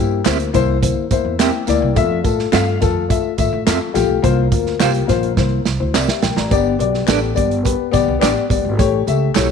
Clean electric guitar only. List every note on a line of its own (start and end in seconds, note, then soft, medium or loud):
0.26 0.36 C4 medium
0.26 0.37 G4 medium
0.26 0.37 A#4 medium
0.26 0.37 E5 medium
1.39 1.50 C4 medium
1.39 1.50 G4 medium
1.39 1.50 A#4 medium
1.39 1.51 E5 medium
2.52 2.63 C4 medium
2.52 2.64 F4 medium
2.52 2.64 A4 medium
2.52 2.64 E5 medium
3.67 3.77 C4 medium
3.67 3.78 F4 medium
3.67 3.78 A4 medium
3.67 3.78 E5 medium
4.80 4.91 F4 medium
4.80 4.91 A#4 medium
4.80 4.91 C5 medium
4.80 4.92 F5 medium
5.94 6.05 C4 medium
5.94 6.05 G4 medium
5.94 6.05 A#4 medium
5.94 6.06 E5 medium
7.08 7.18 D4 medium
7.08 7.19 G4 medium
7.08 7.19 B4 medium
7.08 7.19 D5 medium
8.21 8.32 D4 medium
8.21 8.32 G4 medium
8.21 8.32 B4 medium
8.21 8.32 D5 medium
9.35 9.46 A3 medium
9.35 9.46 E4 medium
9.35 9.46 G4 medium
9.35 9.46 C#5 medium